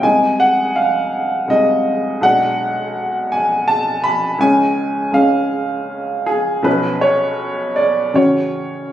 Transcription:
X:1
M:3/4
L:1/8
Q:1/4=82
K:Abmix
V:1 name="Upright piano"
a g f2 e2 | [K:C#phr] f3 g a b | g2 ^e3 G | B c2 d c2 |]
V:2 name="Upright piano"
[C,,A,EA]4 [C,,A,EA]2 | [K:C#phr] [B,,,G,DG]6 | [C,,G,CG]2 [C,,G,CG]4 | [B,,,^E,CG]4 [A,,,C,CF]2 |]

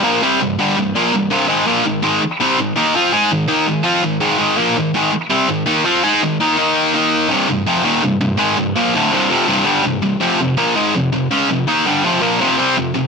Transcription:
X:1
M:4/4
L:1/8
Q:1/4=165
K:Cm
V:1 name="Distorted electric guitar" clef=bass
[B,,F,B,] [C,G,C] [C,,G,,] [G,,D,G,] [C,,G,,] [B,,F,B,] [C,,G,,] [C,,G,,C,] | [A,,E,A,] [B,,F,B,] [A,,E,] [A,,E,A,] z [C,G,C] [A,,E,] [E,B,E] | [F,CF] [A,EA] [A,,E,] [E,B,E] [A,,E,] [F,CF] [A,,E,] [A,,E,A,] | [A,,E,A,] [B,,F,B,] [A,,E,] [A,,E,A,] z [C,G,C] [A,,E,] [E,B,E] |
[F,CF] [A,EA] [A,,E,] [E,B,E] [E,B,E]2 [E,B,E]2 | [C,,G,,C,] [C,,G,,] [F,,C,F,] [E,,B,,E,] [C,,G,,] [C,,G,,] [A,,E,A,] [C,,G,,] | [B,,F,B,] [D,,=A,,D,] [C,,G,,C,] [F,,C,F,] [C,,G,,C,] [G,,D,G,] [C,,G,,] [C,,G,,] | [F,,C,F,] [F,,C,] [B,,F,B,] [A,,E,A,] [F,,C,] [F,,C,] [_D,A,_D] [F,,C,] |
[E,B,E] [G,,D,G,] [F,,C,F,] [B,,F,B,] [F,,C,F,] [C,G,C] [F,,C,] [F,,C,] |]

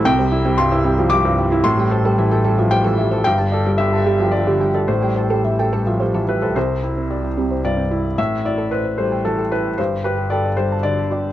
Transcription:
X:1
M:3/4
L:1/16
Q:1/4=112
K:C
V:1 name="Synth pluck"
C c E C G c C G E C G E | A g c A e g A e c A e c | G a d G g a G g d G g d | A g c A e g A e c A e c |
C z G C G E C c E C E z | A z e A e c A g c A c z | G z g G g d G a d G d z |]
V:2 name="Felt piano"
g4 c'4 d'4 | c'8 g4 | g4 e4 d4 | c8- c2 B2 |
c8 d4 | e2 d2 B2 c2 A2 B2 | c2 B2 d2 c2 d4 |]
V:3 name="Felt piano" clef=bass
C,, G, E G, G,, E G, F, G, G,, G, E | A,, G, A G, E, A G, F, G, E, G, A | G,, G, A G, D, A G, F, G, D, G, A | A,, G, A G, E, A G, F, G, E, G, A |
C,,2 E2 d2 G,2 G,,2 E2 | A,,2 E2 c2 G,2 E,2 E2 | G,,2 G2 A2 G,2 D,2 G2 |]
V:4 name="Double bass" clef=bass
C,,12 | A,,,12 | G,,,12 | A,,,12 |
C,,12 | A,,,12 | G,,,12 |]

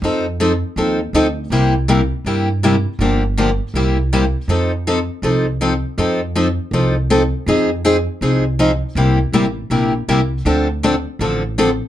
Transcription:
X:1
M:4/4
L:1/16
Q:"Swing" 1/4=161
K:F
V:1 name="Steel-string acoustic guitar"
[F,C_EA]2 z2 [F,CEA] z3 [F,CEA]2 z2 [F,CEA] z3 | [C,G,B,EG]2 z2 [C,G,B,EG] z3 [C,G,B,EG]2 z2 [C,G,B,EG] z3 | [D,F,B,DG]2 z2 [D,F,B,DG] z3 [C,G,B,EG]2 z2 [C,G,B,EG] z3 | [F,C_EA]2 z2 [F,CEA] z3 [F,CEA]2 z2 [F,CEA] z3 |
[F,C_EA]2 z2 [F,CEA] z3 [F,CEA]2 z2 [F,CEA] z3 | [F,C_E_A]2 z2 [F,CEA] z3 [F,CEA]2 z2 [F,CEA] z3 | [C,G,B,EG]2 z2 [C,G,B,EG] z3 [C,G,B,EG]2 z2 [C,G,B,EG] z3 | [D,F,CDA]2 z2 [D,F,CDA] z3 [D,F,CDA]2 z2 [D,F,CDA] z3 |]
V:2 name="Upright bass" clef=bass
F,,8 _E,,4 D,,4 | C,,8 G,,8 | G,,,8 C,,8 | F,,8 C,,8 |
F,,8 C,,8 | F,,8 C,,8 | C,,4 A,,,4 B,,,4 C,,4 | D,,8 A,,,8 |]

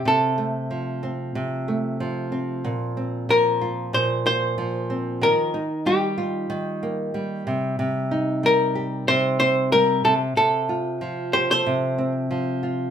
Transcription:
X:1
M:4/4
L:1/16
Q:"Swing 16ths" 1/4=93
K:Fmix
V:1 name="Hollow-body jazz guitar"
A12 z4 | z4 B4 c2 c6 | B4 G8 z4 | z4 B4 c2 c2 B2 A2 |
A4 z2 c c4 z4 z |]
V:2 name="Nylon-string guitar" clef=bass
C,2 A,2 F,2 C2 C,2 A,2 F,2 C2 | B,,2 C2 F,2 F2 B,,2 B,2 F,2 C2 | E,2 E2 G,2 F2 E,2 B,2 G,2 C,2 | C,2 E2 G,2 G2 C,2 C2 G,2 C,2 |
C,2 F2 F,2 G A C,2 C2 F,2 F2 |]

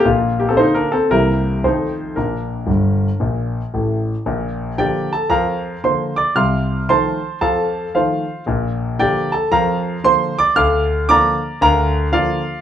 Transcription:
X:1
M:4/4
L:1/16
Q:"Swing" 1/4=114
K:Bb
V:1 name="Grand piano"
[B,F]2 [B,G] [CA] [Ec] [DB] [CA]2 [=EB]4 [_Ec]4 | [DB]12- [DB]2 z2 | z4 [Gdg]2 [Aa]2 [Bfb]4 [cc']2 [dd']2 | [fc'f']4 [cac']4 [Afa]4 [Fcf]4 |
z4 [Gdg]2 [Aa]2 [Bfb]4 [cc']2 [dd']2 | [fd'f']4 [dbd']4 [Bfb]4 [Fdf]4 |]
V:2 name="Grand piano" clef=bass
[B,,,B,,]4 [D,B,]4 [C,,C,=E,G,B,]4 [F,,_E,F,A,]4 | [B,,,B,,]4 [G,,,G,,]4 [B,,,B,,]4 [A,,,A,,]4 | [B,,,B,,]4 [D,F,B,]4 [F,,F,]4 [D,F,B,]4 | [C,,C,]4 [E,F,A,]4 [F,,F,]4 [E,F,A,]4 |
[B,,,B,,]4 [D,F,B,]4 [F,,F,]4 [D,F,B,]4 | [D,,D,]4 [D,F,B,]4 [D,,D,]4 [D,F,B,]4 |]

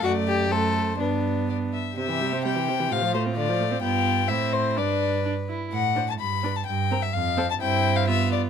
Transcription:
X:1
M:2/4
L:1/16
Q:1/4=127
K:C
V:1 name="Violin"
d4 c4 | B4 d2 e2 | e4 g4 | f2 c2 d4 |
g4 e2 c2 | d4 z4 | ^f3 a b3 a | g3 e f3 a |
g3 f e2 d2 |]
V:2 name="Violin"
^F2 G2 A4 | D6 z2 | G8 | F8 |
F4 E4 | B6 z2 | z2 c2 z2 B2 | z2 _B2 z2 A2 |
E4 F4 |]
V:3 name="Viola"
A,4 A,4 | B,6 z2 | C, E, G, C G, E, C, E, | C, F, A, C D, F, A, C |
B,4 C4 | D4 D2 E2 | z2 D2 z2 D2 | z2 C2 z2 C2 |
C4 B,4 |]
V:4 name="Cello" clef=bass
^F,,8 | G,,6 z2 | C,8 | A,,8 |
G,,4 A,,4 | G,,6 z2 | A,,4 G,,4 | G,,4 F,,4 |
G,,8 |]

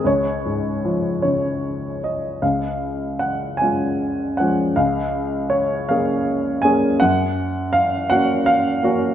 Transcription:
X:1
M:6/8
L:1/8
Q:3/8=53
K:Db
V:1 name="Upright piano"
d3 d2 e | f2 g a2 g | f2 d f2 a | g2 f g f2 |]
V:2 name="Upright piano"
D,, A,, F, D,3 | D,,3 [A,DF]2 [F,A,D] | D,,3 [B,DA]2 [B,DA] | G,,3 [B,DG]2 [B,DG] |]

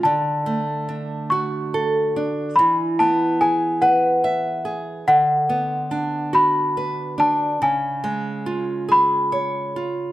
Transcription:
X:1
M:6/8
L:1/8
Q:3/8=47
K:Dlyd
V:1 name="Celesta"
a3 c'3 | b a g f2 z | f3 b2 a | g3 b3 |]
V:2 name="Nylon-string guitar"
D, A, D F A D | E, B, G B e G | D, B, D F B D | C, G, ^E G c E |]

